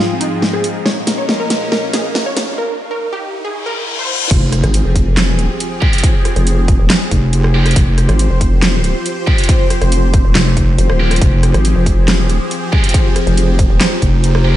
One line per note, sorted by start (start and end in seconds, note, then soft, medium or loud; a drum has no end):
0.00 0.84 G#2 medium
0.00 2.54 F3 medium
0.00 0.84 C4 medium
0.00 0.16 F4 medium
0.00 0.84 G#4 medium
0.00 1.55 G#4 medium
0.00 1.55 D#5 medium
0.00 1.55 A#5 medium
0.00 0.86 C6 medium
0.00 riser medium
0.21 0.46 D#4 medium
0.21 closed hi-hat medium
0.42 snare medium
0.53 0.78 G#4 loud
0.53 cross-stick soft
0.64 closed hi-hat medium
0.85 2.56 A#2 medium
0.85 2.56 C#4 medium
0.85 2.56 A#4 medium
0.85 2.58 A#4 medium
0.85 1.11 C#5 loud
0.85 snare medium
0.98 2.58 F5 medium
1.07 snare medium
1.07 closed hi-hat medium
1.18 1.35 C#5 medium
1.29 snare medium
1.40 1.65 A#4 medium
1.50 snare medium
1.50 closed hi-hat medium
1.72 1.89 A#4 medium
1.72 snare medium
1.93 2.19 G#4 loud
1.93 snare medium
1.93 closed hi-hat medium
2.15 snare medium
2.26 2.51 C#5 loud
2.37 snare medium
2.37 closed hi-hat medium
2.58 2.83 A#4 loud
2.91 3.07 A#4 medium
3.13 3.37 G4 loud
3.45 3.61 G#4 medium
3.45 reverse cymbal medium
3.66 3.91 A#4 loud
3.99 4.24 C5 medium
4.31 4.40 F1 medium
4.31 14.57 F3 medium
4.31 14.57 C4 medium
4.31 14.57 F4 medium
4.31 14.57 G4 medium
4.31 7.75 G#4 medium
4.31 kick loud
4.31 closed hi-hat medium
4.31 crash loud
4.31 impact medium
4.42 4.62 F1 medium
4.52 cross-stick medium
4.52 closed hi-hat medium
4.64 4.83 G#1 loud
4.64 14.57 C5 medium
4.64 cross-stick medium
4.64 closed hi-hat soft
4.74 closed hi-hat medium
4.85 5.30 F1 loud
4.96 kick medium
4.96 closed hi-hat medium
5.17 snare loud
5.17 clap medium
5.17 closed hi-hat medium
5.30 5.48 E1 loud
5.39 closed hi-hat medium
5.60 closed hi-hat medium
5.82 5.91 F3 medium
5.82 5.91 G#3 medium
5.82 5.91 G4 loud
5.82 kick loud
5.93 6.02 F3 medium
5.93 6.02 G#3 medium
5.93 6.02 G4 loud
5.93 closed hi-hat medium
5.98 closed hi-hat medium
6.03 kick loud
6.03 closed hi-hat medium
6.25 cross-stick medium
6.25 closed hi-hat medium
6.36 6.78 F1 loud
6.36 closed hi-hat soft
6.47 closed hi-hat medium
6.68 kick loud
6.68 closed hi-hat medium
6.79 6.88 D#1 loud
6.90 snare loud
6.90 clap medium
6.90 closed hi-hat medium
7.11 7.75 F1 loud
7.11 kick medium
7.11 closed hi-hat medium
7.33 closed hi-hat medium
7.44 cross-stick medium
7.54 7.64 F3 medium
7.54 7.64 G#3 medium
7.54 7.64 G4 loud
7.65 7.75 F3 medium
7.65 7.75 G#3 medium
7.65 7.75 G4 loud
7.65 cross-stick medium
7.65 closed hi-hat soft
7.71 closed hi-hat medium
7.76 7.86 F1 medium
7.76 11.20 C5 medium
7.76 kick loud
7.76 closed hi-hat medium
7.87 8.07 F1 medium
7.98 cross-stick soft
7.98 closed hi-hat medium
8.09 8.29 G#1 loud
8.09 cross-stick medium
8.09 closed hi-hat soft
8.19 closed hi-hat medium
8.31 8.93 F1 loud
8.41 kick medium
8.41 closed hi-hat medium
8.62 snare loud
8.62 clap medium
8.62 closed hi-hat medium
8.84 closed hi-hat medium
9.06 closed hi-hat medium
9.27 9.37 F3 medium
9.27 9.37 G#3 medium
9.27 9.37 G4 loud
9.27 kick loud
9.38 9.47 F3 medium
9.38 9.47 G#3 medium
9.38 9.47 G4 loud
9.38 closed hi-hat soft
9.44 closed hi-hat medium
9.49 kick loud
9.49 closed hi-hat medium
9.70 cross-stick medium
9.70 closed hi-hat medium
9.82 10.23 F1 loud
9.82 cross-stick medium
9.82 closed hi-hat soft
9.92 closed hi-hat medium
10.14 kick loud
10.14 closed hi-hat medium
10.25 10.34 D#1 loud
10.35 10.77 F1 loud
10.35 snare loud
10.35 clap medium
10.35 closed hi-hat medium
10.57 kick medium
10.57 closed hi-hat medium
10.78 10.88 F1 loud
10.78 closed hi-hat medium
10.90 11.20 D#1 medium
10.90 cross-stick medium
11.00 11.15 F3 medium
11.00 11.15 G#3 medium
11.00 11.15 G4 medium
11.11 cross-stick medium
11.11 closed hi-hat soft
11.16 closed hi-hat medium
11.22 11.31 F1 medium
11.22 14.57 G#4 medium
11.22 kick loud
11.22 closed hi-hat medium
11.33 11.53 F1 medium
11.43 cross-stick medium
11.43 closed hi-hat medium
11.54 11.74 G#1 medium
11.54 cross-stick medium
11.54 closed hi-hat soft
11.65 closed hi-hat medium
11.76 12.21 F1 loud
11.86 kick medium
11.86 closed hi-hat medium
12.08 snare loud
12.08 clap medium
12.08 closed hi-hat medium
12.21 12.39 E1 loud
12.30 closed hi-hat medium
12.51 closed hi-hat medium
12.72 12.82 F3 medium
12.72 12.82 G#3 medium
12.72 12.82 G4 loud
12.72 kick loud
12.84 12.93 F3 medium
12.84 12.93 G#3 medium
12.84 12.93 G4 loud
12.84 closed hi-hat soft
12.89 14.57 A#5 medium
12.89 closed hi-hat medium
12.94 kick loud
12.94 closed hi-hat medium
13.16 cross-stick medium
13.16 closed hi-hat medium
13.27 13.68 F1 loud
13.27 closed hi-hat soft
13.37 closed hi-hat medium
13.59 kick loud
13.59 closed hi-hat medium
13.70 13.79 D#1 loud
13.81 snare loud
13.81 clap medium
13.81 closed hi-hat medium
14.02 14.57 F1 loud
14.02 kick medium
14.02 closed hi-hat medium
14.24 closed hi-hat medium
14.35 cross-stick medium
14.45 14.55 F3 medium
14.45 14.55 G#3 medium
14.45 14.55 G4 loud